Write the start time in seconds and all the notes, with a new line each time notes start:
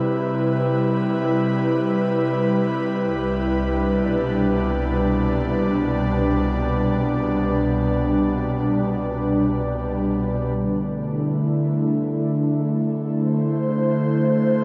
Already playing: C3 G3 E4 B4
3.01 C2
3.65 D4
3.84 B2
10.57 D3
10.73 A3
11.06 E4
13.15 C5